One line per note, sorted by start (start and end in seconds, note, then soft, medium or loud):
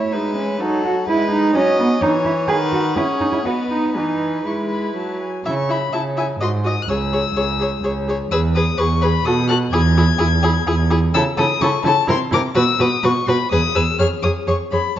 0.00 0.15 A3 soft
0.00 0.14 E4 soft
0.00 0.14 C#5 soft
0.00 0.62 E5 soft
0.13 0.60 G#3 soft
0.13 0.36 D#4 medium
0.13 0.62 B4 soft
0.37 0.60 C#4 medium
0.60 1.07 F#3 soft
0.60 0.84 D#4 medium
0.60 1.07 A4 soft
0.60 1.10 F#5 soft
0.85 0.93 F#4 medium
1.08 1.55 G#3 medium
1.08 1.31 E4 medium
1.08 1.54 B4 medium
1.08 1.54 D#5 soft
1.32 1.57 D#4 medium
1.55 2.01 F#3 medium
1.55 1.79 C#4 medium
1.55 2.03 D#5 medium
1.55 2.50 G#5 medium
1.80 1.88 B3 medium
2.02 2.50 E3 medium
2.02 2.10 D#4 medium
2.02 2.50 C#5 medium
2.25 2.33 E4 medium
2.48 2.98 D#3 medium
2.48 2.56 G#4 medium
2.48 2.98 B4 medium
2.48 3.47 F#5 medium
2.72 2.80 F#4 medium
2.96 3.45 C#4 medium
2.96 3.04 E4 medium
2.96 3.47 G#4 medium
3.21 3.26 D#4 medium
3.32 3.37 E4 medium
3.45 3.98 B3 soft
3.45 3.53 F#4 medium
3.45 3.93 B4 soft
3.45 3.95 D#5 soft
3.70 3.94 D#4 medium
3.94 4.45 E3 soft
3.94 4.47 D#4 medium
3.94 5.21 B4 soft
3.94 4.39 G#5 soft
4.45 4.94 G#3 soft
4.45 5.21 E4 soft
4.45 4.55 C#6 soft
4.71 4.95 B5 soft
4.96 5.44 F#3 soft
4.96 5.20 A5 soft
5.22 5.45 G#5 soft
5.45 5.87 C#3 medium
5.45 5.54 E4 soft
5.45 5.54 E5 soft
5.45 5.72 C#6 medium
5.69 5.77 E4 soft
5.69 5.78 E5 soft
5.69 5.93 B5 medium
5.93 6.35 C#3 medium
5.93 6.01 E4 soft
5.93 6.01 E5 soft
5.93 6.02 A5 medium
6.17 6.25 E4 soft
6.17 6.25 E5 soft
6.17 6.26 G#5 medium
6.40 6.83 G#2 medium
6.40 6.49 F#4 soft
6.40 6.49 D#5 soft
6.40 6.50 C6 medium
6.64 6.72 F#4 soft
6.64 6.74 D#5 soft
6.64 6.83 D#6 medium
6.82 6.90 F#6 medium
6.89 7.31 C#2 medium
6.89 6.97 G#4 soft
6.89 6.97 C#5 soft
6.89 8.08 E6 medium
7.13 7.21 G#4 soft
7.13 7.21 C#5 soft
7.36 7.78 C#2 medium
7.36 7.44 G#4 soft
7.36 7.44 C#5 soft
7.60 7.68 G#4 soft
7.60 7.70 C#5 soft
7.84 8.26 C#2 medium
7.84 7.92 G#4 soft
7.84 7.92 C#5 soft
8.08 8.16 G#4 soft
8.08 8.17 C#5 medium
8.31 8.73 E2 medium
8.31 8.40 G#4 medium
8.31 8.40 B4 medium
8.31 8.39 E6 medium
8.55 8.64 G#4 medium
8.55 8.64 B4 medium
8.55 8.80 D#6 medium
8.78 9.20 E2 medium
8.78 8.88 G#4 medium
8.78 8.86 B4 medium
8.78 9.04 C#6 medium
9.02 9.11 G#4 medium
9.02 9.10 B4 medium
9.02 9.27 B5 medium
9.25 9.67 B2 medium
9.25 9.35 F#4 medium
9.25 9.33 A4 medium
9.25 9.48 D#6 medium
9.48 9.58 F#4 medium
9.48 9.57 A4 medium
9.48 9.56 F#6 medium
9.72 10.14 E2 medium
9.72 9.82 E4 medium
9.72 9.81 G#4 medium
9.72 10.88 G#6 medium
9.97 10.05 E4 medium
9.97 10.06 G#4 medium
10.18 10.62 E2 medium
10.18 10.28 E4 medium
10.18 10.26 G#4 medium
10.43 10.52 E4 medium
10.43 10.51 G#4 medium
10.67 11.09 E2 medium
10.67 10.75 E4 medium
10.67 10.75 G#4 medium
10.90 10.98 E4 medium
10.90 10.99 G#4 medium
11.14 11.22 C#3 medium
11.14 11.22 E4 medium
11.14 11.23 A4 medium
11.14 11.22 E6 loud
11.37 11.46 C#3 medium
11.37 11.46 E4 medium
11.37 11.45 A4 medium
11.37 11.63 D#6 loud
11.61 11.69 C#3 medium
11.61 11.69 E4 medium
11.61 11.71 A4 medium
11.61 11.85 C#6 medium
11.84 11.92 C#3 medium
11.84 11.92 E4 medium
11.84 11.94 A4 medium
11.84 12.08 A5 loud
12.07 12.16 C3 medium
12.07 12.15 E4 medium
12.07 12.16 A#4 medium
12.07 12.18 C6 loud
12.31 12.40 C3 medium
12.31 12.39 E4 medium
12.31 12.41 A#4 medium
12.31 12.41 D6 loud
12.55 12.63 B2 medium
12.55 12.63 F#4 medium
12.55 12.63 B4 medium
12.55 12.83 E6 medium
12.79 12.87 B2 medium
12.79 12.87 F#4 medium
12.79 12.88 B4 medium
12.79 13.06 D#6 medium
13.03 13.12 B2 medium
13.03 13.12 F#4 medium
13.03 13.11 B4 medium
13.03 13.30 C#6 medium
13.27 13.36 B2 medium
13.27 13.35 F#4 medium
13.27 13.36 B4 medium
13.27 13.51 B5 medium
13.51 13.60 E2 medium
13.51 13.60 G#4 medium
13.51 13.60 B4 medium
13.51 13.77 D#6 loud
13.75 13.84 E2 medium
13.75 13.83 G#4 medium
13.75 13.83 B4 medium
13.75 13.98 E6 medium
13.99 14.07 F2 medium
13.99 14.07 G#4 medium
13.99 14.07 C#5 medium
13.99 14.07 F6 medium
14.22 14.31 F2 medium
14.22 14.32 G#4 medium
14.22 14.31 C#5 medium
14.22 14.30 D#6 medium
14.47 14.55 F2 medium
14.47 14.55 G#4 medium
14.47 14.56 C#5 medium
14.47 14.56 C#6 medium
14.72 14.80 F2 soft
14.72 14.80 G#4 soft
14.72 14.80 C#5 soft
14.72 14.96 B5 medium